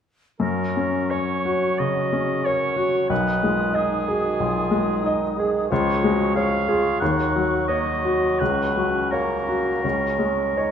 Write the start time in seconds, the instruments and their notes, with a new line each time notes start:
0.40 grand piano F#2, bassoon F#3, oboe A#4, flute section C#6
0.77 grand piano C#4
1.10 oboe C#5, grand piano C#5
1.45 grand piano F#4
1.79 grand piano C#3, clarinet F#4, oboe D#5
2.13 grand piano C#4, clarinet G#4
2.45 clarinet A#4, oboe C#5, grand piano C#5
2.76 grand piano F#4, clarinet F#4
3.09 grand piano B1, bassoon D#3, clarinet D#4, oboe B4, flute section D#6
3.43 grand piano G#3, clarinet F4
3.74 clarinet D#4, oboe G#4, grand piano D#5
4.08 clarinet F#4, grand piano G#4
4.40 grand piano B1, clarinet F4
4.71 grand piano G#3
5.03 clarinet D#4, grand piano D#5
5.37 clarinet G#4, grand piano G#4
5.69 grand piano C#2, bassoon F3, clarinet F4, oboe C#5, flute section C#6
6.03 grand piano G#3, clarinet F#4
6.35 clarinet G#4, grand piano C#5, oboe F5
6.68 clarinet F4, grand piano G#4
7.00 grand piano D#2, bassoon F#3, clarinet D#4, oboe F#5
7.35 grand piano F#3
7.68 clarinet A#3, grand piano C#5, oboe D#5
8.05 grand piano F#4
8.40 grand piano C#2, clarinet C#4, oboe B4
8.77 grand piano F#3
9.11 bassoon A#3, oboe A#4, grand piano C#5
9.49 grand piano F#4
9.84 grand piano C#2, bassoon C#4
10.19 grand piano G#3
10.57 bassoon D#4, grand piano C#5